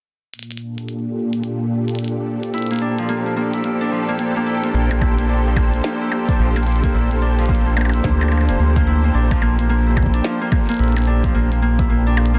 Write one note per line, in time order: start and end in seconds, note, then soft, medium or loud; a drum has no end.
0.33 4.74 A#2 medium
0.33 closed hi-hat soft
0.39 closed hi-hat soft
0.43 closed hi-hat soft
0.51 closed hi-hat soft
0.51 closed hi-hat medium
0.57 12.39 D4 medium
0.57 closed hi-hat medium
0.68 12.39 G4 medium
0.68 12.39 A4 medium
0.78 closed hi-hat soft
0.89 closed hi-hat medium
1.33 closed hi-hat soft
1.44 closed hi-hat medium
1.88 closed hi-hat soft
1.95 closed hi-hat soft
1.99 closed hi-hat medium
2.04 closed hi-hat soft
2.08 closed hi-hat soft
2.23 12.39 C5 medium
2.43 closed hi-hat medium
2.54 3.05 E4 medium
2.54 closed hi-hat soft
2.58 closed hi-hat soft
2.62 closed hi-hat soft
2.67 closed hi-hat soft
2.71 3.09 A#3 medium
2.71 closed hi-hat soft
2.74 closed hi-hat medium
2.76 closed hi-hat medium
2.79 3.81 D4 medium
2.79 closed hi-hat medium
2.99 3.90 F3 medium
2.99 closed hi-hat medium
3.09 3.26 A#3 medium
3.09 closed hi-hat medium
3.26 3.36 A#3 medium
3.36 3.64 A#3 medium
3.54 3.97 E4 medium
3.54 closed hi-hat medium
3.64 4.08 A#3 medium
3.64 closed hi-hat medium
3.81 5.29 D4 medium
3.91 4.79 F3 medium
4.08 4.19 A#3 loud
4.19 4.36 A#3 medium
4.19 closed hi-hat medium
4.36 4.63 A#3 medium
4.47 5.01 E4 medium
4.64 4.74 A#3 medium
4.64 closed hi-hat medium
4.74 5.81 A#1 medium
4.74 4.91 A#3 medium
4.91 5.18 A#3 loud
4.91 closed hi-hat medium
4.91 percussion blips medium
5.01 5.52 E4 medium
5.01 kick loud
5.01 percussion blips medium
5.18 5.56 A#3 medium
5.18 closed hi-hat medium
5.29 6.28 D4 medium
5.46 6.38 F3 medium
5.56 5.73 A#3 medium
5.56 kick loud
5.56 percussion blips medium
5.74 5.84 A#3 medium
5.74 closed hi-hat medium
5.84 6.11 A#3 medium
5.84 snare loud
6.01 6.45 E4 medium
6.12 6.56 A#3 medium
6.12 percussion blips medium
6.29 7.21 D4 medium
6.29 kick medium
6.29 closed hi-hat medium
6.39 6.91 A#1 loud
6.39 7.38 F3 medium
6.56 6.66 A#3 loud
6.56 closed hi-hat soft
6.56 percussion blips soft
6.63 closed hi-hat soft
6.67 6.83 A#3 medium
6.67 closed hi-hat soft
6.72 closed hi-hat soft
6.76 closed hi-hat soft
6.84 7.11 A#3 medium
6.84 kick loud
6.84 closed hi-hat medium
6.94 8.01 A#1 medium
6.94 7.45 E4 medium
7.11 7.49 A#3 medium
7.11 closed hi-hat medium
7.22 8.21 D4 loud
7.39 8.31 F3 medium
7.39 closed hi-hat soft
7.46 7.66 A#3 medium
7.46 kick loud
7.46 closed hi-hat soft
7.55 closed hi-hat soft
7.66 7.76 A#3 medium
7.77 8.04 A#3 medium
7.77 percussion blips medium
7.81 percussion blips medium
7.85 percussion blips medium
7.89 percussion blips soft
7.94 8.38 E4 medium
7.94 closed hi-hat medium
8.04 8.50 D2 medium
8.04 8.48 A#3 medium
8.04 kick loud
8.04 snare loud
8.21 9.14 D4 medium
8.21 percussion blips soft
8.28 percussion blips soft
8.32 9.30 F3 medium
8.32 percussion blips soft
8.37 percussion blips soft
8.41 percussion blips soft
8.49 8.57 F1 medium
8.49 8.59 A#3 loud
8.49 closed hi-hat medium
8.59 9.11 D2 medium
8.59 8.76 A#3 medium
8.76 9.04 A#3 loud
8.76 kick loud
8.76 closed hi-hat medium
8.87 9.37 E4 medium
9.04 9.41 A#3 medium
9.14 10.21 A#1 loud
9.14 10.13 D4 loud
9.31 10.23 F3 medium
9.31 kick loud
9.31 closed hi-hat medium
9.31 percussion blips medium
9.42 9.59 A#3 loud
9.42 percussion blips medium
9.59 9.69 A#3 medium
9.59 closed hi-hat medium
9.69 9.97 A#3 loud
9.86 10.30 E4 medium
9.97 10.41 A#3 medium
9.97 kick loud
9.97 percussion blips medium
10.02 kick medium
10.06 kick medium
10.14 11.07 D4 loud
10.14 closed hi-hat medium
10.24 11.23 F3 medium
10.24 snare loud
10.41 10.51 A#3 medium
10.52 10.69 A#3 medium
10.52 kick loud
10.52 percussion blips medium
10.69 10.96 A#3 loud
10.69 closed hi-hat medium
10.72 closed hi-hat medium
10.74 closed hi-hat soft
10.77 11.30 E4 medium
10.77 closed hi-hat soft
10.79 11.31 A#1 loud
10.79 closed hi-hat soft
10.84 closed hi-hat soft
10.88 closed hi-hat soft
10.92 closed hi-hat soft
10.96 11.34 A#3 medium
10.96 closed hi-hat soft
10.96 percussion blips soft
10.98 closed hi-hat soft
11.02 closed hi-hat soft
11.04 closed hi-hat soft
11.06 12.06 D4 loud
11.06 closed hi-hat soft
11.24 12.16 F3 medium
11.24 kick loud
11.24 closed hi-hat medium
11.35 12.39 A#1 loud
11.35 11.51 A#3 loud
11.52 11.62 A#3 medium
11.52 closed hi-hat medium
11.62 11.89 A#3 loud
11.79 12.23 E4 medium
11.79 kick loud
11.79 closed hi-hat medium
11.90 12.34 A#3 medium
12.07 12.39 D4 loud
12.17 12.39 F3 medium
12.17 percussion blips medium
12.26 closed hi-hat medium
12.34 12.39 A#3 loud